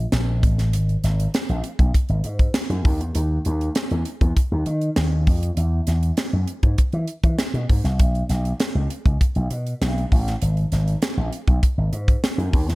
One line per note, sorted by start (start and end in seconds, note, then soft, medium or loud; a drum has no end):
0.12 0.43 A#1 medium
0.12 snare medium
0.12 closed hi-hat medium
0.43 0.73 A1 medium
0.43 kick medium
0.43 closed hi-hat medium
0.58 snare soft
0.58 closed hi-hat medium
0.73 0.95 G#1 loud
0.73 closed hi-hat medium
0.89 closed hi-hat soft
1.04 1.26 G#1 medium
1.04 snare soft
1.04 closed hi-hat medium
1.20 closed hi-hat soft
1.34 snare loud
1.34 closed hi-hat medium
1.49 1.60 A#1 medium
1.49 closed hi-hat soft
1.64 closed hi-hat medium
1.79 1.90 B1 medium
1.79 kick medium
1.79 closed hi-hat soft
1.94 kick medium
1.94 closed hi-hat medium
2.09 2.21 G#1 medium
2.09 closed hi-hat soft
2.24 2.47 G#2 medium
2.24 closed hi-hat medium
2.39 kick medium
2.39 closed hi-hat soft
2.54 snare loud
2.54 closed hi-hat medium
2.70 2.81 F#2 medium
2.70 closed hi-hat soft
2.85 3.00 D#2 medium
2.85 kick loud
2.85 open hi-hat medium
3.00 3.12 E2 medium
3.00 closed hi-hat medium
3.15 3.38 D#2 medium
3.15 closed hi-hat medium
3.45 3.68 D#2 medium
3.45 closed hi-hat medium
3.61 closed hi-hat soft
3.75 snare loud
3.75 closed hi-hat medium
3.90 4.02 E2 medium
3.90 closed hi-hat soft
4.05 closed hi-hat medium
4.21 4.32 E2 medium
4.21 kick medium
4.21 closed hi-hat soft
4.37 kick medium
4.37 closed hi-hat medium
4.52 4.63 D#2 medium
4.66 4.89 D#3 medium
4.66 closed hi-hat medium
4.81 closed hi-hat soft
4.96 5.27 D#2 medium
4.96 snare loud
4.96 closed hi-hat medium
5.27 5.49 F2 medium
5.27 kick medium
5.27 open hi-hat medium
5.43 closed hi-hat medium
5.57 5.80 E2 medium
5.57 closed hi-hat medium
5.87 6.10 E2 medium
5.87 snare soft
5.87 closed hi-hat medium
6.03 closed hi-hat soft
6.17 snare loud
6.17 closed hi-hat medium
6.33 6.44 F#2 medium
6.47 closed hi-hat medium
6.63 6.74 G#2 medium
6.63 kick medium
6.63 closed hi-hat soft
6.78 kick medium
6.78 closed hi-hat medium
6.92 7.05 E3 medium
6.92 closed hi-hat soft
7.07 closed hi-hat medium
7.23 7.35 E3 medium
7.23 kick medium
7.23 closed hi-hat soft
7.39 snare medium
7.39 closed hi-hat medium
7.54 7.65 B2 medium
7.54 closed hi-hat soft
7.70 7.81 G#2 medium
7.70 kick medium
7.70 open hi-hat medium
7.84 8.00 C2 medium
7.84 snare soft
7.84 closed hi-hat medium
7.99 8.22 B1 loud
7.99 kick loud
7.99 closed hi-hat medium
8.15 closed hi-hat soft
8.29 8.52 B1 medium
8.29 snare soft
8.29 closed hi-hat medium
8.45 closed hi-hat soft
8.60 snare loud
8.60 closed hi-hat medium
8.75 8.86 C#2 medium
8.90 closed hi-hat medium
9.05 9.17 C#2 medium
9.05 kick medium
9.05 closed hi-hat soft
9.21 kick medium
9.21 closed hi-hat medium
9.35 9.47 B1 medium
9.35 closed hi-hat soft
9.50 9.73 B2 medium
9.50 closed hi-hat medium
9.67 closed hi-hat soft
9.81 10.03 B1 medium
9.81 snare loud
9.81 closed hi-hat medium
9.98 closed hi-hat soft
10.12 10.34 A1 medium
10.12 kick medium
10.12 open hi-hat medium
10.27 snare soft
10.27 closed hi-hat medium
10.42 10.64 G#1 loud
10.42 closed hi-hat medium
10.57 closed hi-hat soft
10.72 10.94 G#1 medium
10.72 snare soft
10.72 closed hi-hat medium
10.88 closed hi-hat soft
11.02 snare loud
11.02 closed hi-hat medium
11.17 11.28 A#1 medium
11.33 closed hi-hat medium
11.47 11.59 B1 medium
11.47 kick medium
11.47 closed hi-hat soft
11.63 kick medium
11.63 closed hi-hat medium
11.78 11.89 G#1 medium
11.93 12.15 G#2 medium
11.93 closed hi-hat medium
12.08 kick medium
12.08 closed hi-hat soft
12.24 snare loud
12.24 closed hi-hat medium
12.38 12.49 F#2 medium
12.38 closed hi-hat soft
12.53 12.65 D#2 medium
12.53 kick medium
12.53 open hi-hat medium
12.69 12.75 E2 medium
12.69 snare soft
12.69 closed hi-hat medium